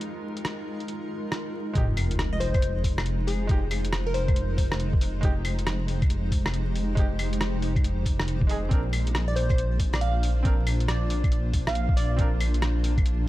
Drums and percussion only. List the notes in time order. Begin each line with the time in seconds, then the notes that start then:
0.01 closed hi-hat
0.37 closed hi-hat
0.45 cross-stick, closed hi-hat
0.80 closed hi-hat
0.88 closed hi-hat
1.32 cross-stick, closed hi-hat
1.75 kick, closed hi-hat
1.97 open hi-hat, claves
2.11 closed hi-hat
2.19 cross-stick, closed hi-hat
2.41 open hi-hat
2.54 kick, closed hi-hat, claves
2.62 closed hi-hat
2.84 kick, open hi-hat
2.98 cross-stick, claves
3.06 closed hi-hat
3.28 open hi-hat
3.49 kick, closed hi-hat
3.71 open hi-hat, claves
3.85 closed hi-hat
3.93 cross-stick, closed hi-hat
4.14 open hi-hat
4.28 kick, closed hi-hat, claves
4.36 closed hi-hat
4.58 kick, open hi-hat
4.72 cross-stick
4.80 closed hi-hat
4.93 kick
5.01 open hi-hat
5.23 kick, closed hi-hat
5.45 open hi-hat, claves
5.59 closed hi-hat
5.67 cross-stick, closed hi-hat
5.88 open hi-hat
6.02 kick, closed hi-hat, claves
6.10 closed hi-hat
6.32 kick, open hi-hat
6.46 cross-stick, claves
6.54 closed hi-hat
6.76 open hi-hat
6.97 kick, closed hi-hat
7.19 open hi-hat, claves
7.33 closed hi-hat
7.41 cross-stick, closed hi-hat
7.62 open hi-hat
7.76 kick, closed hi-hat, claves
7.84 closed hi-hat
8.06 kick, open hi-hat
8.20 cross-stick
8.28 closed hi-hat
8.41 kick
8.49 open hi-hat
8.71 kick, closed hi-hat
8.93 open hi-hat, claves
9.07 closed hi-hat
9.15 cross-stick, closed hi-hat
9.36 open hi-hat
9.50 kick, closed hi-hat, claves
9.58 closed hi-hat
9.80 kick, open hi-hat
9.94 cross-stick, claves
10.01 closed hi-hat
10.23 open hi-hat
10.45 kick, closed hi-hat
10.67 open hi-hat, claves
10.80 closed hi-hat
10.88 cross-stick, closed hi-hat
11.10 open hi-hat
11.24 kick, closed hi-hat, claves
11.32 closed hi-hat
11.53 kick, open hi-hat
11.67 cross-stick
11.75 closed hi-hat
11.89 kick
11.97 open hi-hat
12.19 kick, closed hi-hat
12.41 open hi-hat, claves
12.54 closed hi-hat
12.62 cross-stick, closed hi-hat
12.84 open hi-hat
12.97 kick, closed hi-hat, claves
13.06 closed hi-hat